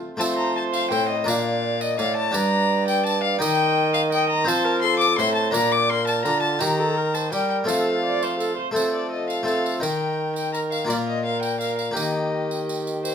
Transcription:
Already playing: harpsichord A3 C4
0.17 harpsichord F3 A3 C4, bassoon F3, viola C5, violin A5, tambourine
0.37 violin A#5
0.57 violin A5
0.74 violin F5, tambourine
0.91 harpsichord A2, bassoon A2, violin G5, tambourine
1.09 violin D#5
1.24 harpsichord A#2 D4 A#4, bassoon A#2, viola D5, violin F5, tambourine
1.81 violin D#5, tambourine
1.97 bassoon A2, harpsichord A2, viola D5, violin F5, tambourine
2.17 violin A5
2.31 harpsichord G2 D4 G4, bassoon G2, viola D5, violin A#5, tambourine
2.88 violin G5, tambourine
3.06 violin A5, tambourine
3.24 violin F5
3.39 bassoon D#3, harpsichord D#3 D#4 G4, viola D#5, violin G5, tambourine
3.94 violin F5, tambourine
4.11 viola D#5, violin G5, tambourine
4.30 violin A#5
4.44 harpsichord F3 C4 C5, bassoon F3, viola C5, violin A5, tambourine
4.64 viola A#4
4.82 viola A4, violin C6
5.00 violin D6, tambourine
5.18 harpsichord A2, bassoon A2, viola C5, violin C6, tambourine
5.35 violin A5
5.51 harpsichord A#2 D4 A#4, bassoon A#2, viola D5, violin A#5, tambourine
5.72 violin D6
5.89 viola A#4, violin C6
6.07 violin A5, tambourine
6.25 bassoon D3, harpsichord D3, viola F4, violin A#5, tambourine
6.42 violin A5
6.59 bassoon D#3, harpsichord D#3 D#4 A#4, viola G4, violin A#5, tambourine
6.79 viola A4
6.97 viola A#4
7.15 viola C5, violin A5, tambourine
7.32 harpsichord G3, bassoon G3, viola A#4, violin G5, tambourine
7.50 violin G5
7.64 bassoon F3, harpsichord F3 A3 C4 A4, violin F5
7.68 viola A4, tambourine
8.04 viola D5
8.22 viola C5, tambourine
8.39 viola A4, tambourine
8.57 viola C5
8.71 harpsichord F3 A3 C4 A4, viola A4
8.76 bassoon F3, violin C5, tambourine
8.94 violin D5
9.12 violin D#5
9.30 violin F5, tambourine
9.43 harpsichord A3 C4 A4, viola A4, violin F5
9.48 tambourine
9.66 tambourine
9.80 harpsichord D#3 D#4 A#4, bassoon D#3, viola A#4, violin G5, tambourine
10.36 violin G5, tambourine
10.53 viola A#4, violin A#5, tambourine
10.72 violin F5, tambourine
10.85 harpsichord A#2 A#3 F4 A#4
10.89 bassoon A#2, viola A#4, violin D5, tambourine
11.07 violin D#5
11.26 viola A#4, violin F5
11.43 violin G5, tambourine
11.61 viola A#4, violin F5, tambourine
11.78 violin F5, tambourine
11.91 harpsichord A#3 G4 A#4
11.96 harpsichord D#3, bassoon D#3, viola G4, violin D#5, tambourine
12.51 tambourine
12.69 tambourine
12.87 tambourine
13.03 violin C5, tambourine

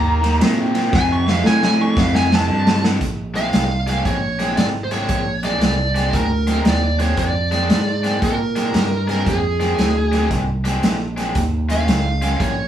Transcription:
Already playing: fingered electric bass D#2, overdriven electric guitar D#3 A#3, lead electric guitar A#5
0.22 overdriven electric guitar D#3 A#3, snare, ride
0.40 fingered electric bass A#2, overdriven electric guitar D#3 C4, snare, ride
0.74 overdriven electric guitar D#3 C4, snare, ride
0.92 overdriven electric guitar F2 C3, fingered electric bass F2, lead electric guitar G#5, kick, snare
1.12 lead electric guitar C#6
1.26 overdriven electric guitar F2 C3, lead electric guitar F5, snare
1.44 overdriven electric guitar F2 D3, fingered electric bass A2, lead electric guitar G#5, snare
1.63 lead electric guitar G#5, snare
1.78 overdriven electric guitar F2 D3, lead electric guitar C#6
1.97 fingered electric bass F2, overdriven electric guitar F2 C3, lead electric guitar F5, kick, snare
2.15 lead electric guitar G#5, snare
2.31 overdriven electric guitar F2 C3, lead electric guitar A5, snare
2.48 overdriven electric guitar F2 D3, fingered electric bass G2
2.67 snare
2.83 overdriven electric guitar F2 D3, snare
3.01 fingered electric bass A#1, kick, snare, closed hi-hat
3.34 overdriven electric guitar A#2 G#3 C4 D4, lead electric guitar F5, snare, closed hi-hat
3.53 fingered electric bass C2, snare, closed hi-hat
3.87 overdriven electric guitar A#2 G#3 C4 D4, snare, closed hi-hat
4.05 fingered electric bass A#1, lead electric guitar C#5, kick, snare, closed hi-hat
4.39 overdriven electric guitar A#2 G#3 C4 D4, snare, closed hi-hat
4.57 fingered electric bass G#1, lead electric guitar D5, snare, closed hi-hat
4.84 lead electric guitar C5
4.91 overdriven electric guitar A#2 G#3 C4 D4, lead electric guitar C#5, snare, closed hi-hat
5.09 fingered electric bass A#1, kick, snare, closed hi-hat
5.43 overdriven electric guitar A#2 G#3 C4 D4, lead electric guitar D5, snare, closed hi-hat
5.61 fingered electric bass C2, snare, closed hi-hat
5.95 overdriven electric guitar A#2 G#3 C4 D4, snare, closed hi-hat
6.13 fingered electric bass D2, lead electric guitar A#4, kick, snare, closed hi-hat
6.47 overdriven electric guitar A#2 G#3 C4 D4, snare, closed hi-hat
6.65 fingered electric bass D#2, lead electric guitar D5, snare, closed hi-hat
6.99 overdriven electric guitar A#2 G#3 C4 D4, lead electric guitar C#5, snare, closed hi-hat
7.17 fingered electric bass F2, lead electric guitar D5, kick, snare, closed hi-hat
7.51 overdriven electric guitar A#2 G#3 C4 D4, snare, closed hi-hat
7.69 fingered electric bass G#2, snare, closed hi-hat
8.04 overdriven electric guitar A#2 G#3 C4 D4, snare, closed hi-hat
8.22 fingered electric bass A#2, lead electric guitar A#4, kick, snare, closed hi-hat
8.56 overdriven electric guitar A#2 G#3 C4 D4, snare, closed hi-hat
8.74 fingered electric bass G2, snare, closed hi-hat
9.08 overdriven electric guitar A#2 G#3 C4 D4, lead electric guitar A#4, snare, closed hi-hat
9.26 fingered electric bass F2, lead electric guitar G#4, kick, snare, closed hi-hat
9.60 overdriven electric guitar A#2 G#3 C4 D4, snare, closed hi-hat
9.78 fingered electric bass D2, snare, closed hi-hat
10.12 overdriven electric guitar A#2 G#3 C4 D4, snare, closed hi-hat
10.31 fingered electric bass C2, kick, snare, closed hi-hat
10.64 overdriven electric guitar A#2 G#3 C4 D4, snare, closed hi-hat
10.83 fingered electric bass A#1, snare, closed hi-hat
11.17 overdriven electric guitar A#2 G#3 C4 D4, snare, closed hi-hat
11.35 fingered electric bass D#2, kick, snare, closed hi-hat
11.69 overdriven electric guitar D#3 G3 C#4 F4, lead electric guitar F5, snare, closed hi-hat
11.87 fingered electric bass C#2, snare, closed hi-hat
12.22 overdriven electric guitar D#3 G3 C#4 F4, snare, closed hi-hat
12.40 fingered electric bass A#1, lead electric guitar C#5, kick, snare, closed hi-hat

